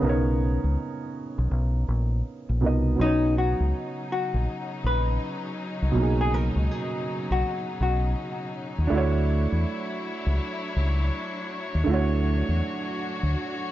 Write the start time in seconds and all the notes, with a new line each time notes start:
Already playing: C#4 A#4
0.00 B1 C#3 B3 D#4
0.07 A#4 C#5
0.64 C#2
1.38 B1
1.51 B1
1.88 A#1
2.49 A#1
2.61 C2 B2 B3 D#4 A#4
2.66 D#5
2.95 C#3 F#3 B3 C#4 D#4
2.99 B1 C#4 D#4
3.06 C#5
3.38 F#4
3.60 C#2
4.12 F#4
4.34 A#1
4.84 A#1 B4
5.82 C2
5.92 B1 B2 F#3
5.97 A#3 D#4
6.02 G#4
6.21 G#4
6.34 A#4
6.56 C#2
6.71 G#4
7.31 B1 F#4
7.80 B1 F#4
8.78 D#2
8.87 F#3 A3 D4
8.91 D2 D4 E4 F#4 C#5
8.97 C#5
9.52 E2
10.26 C#2
10.76 C#2
11.75 D#2
11.84 D2 D3 A3 F#4
11.89 E4 F#4
11.94 C#5
12.49 E2
13.23 D2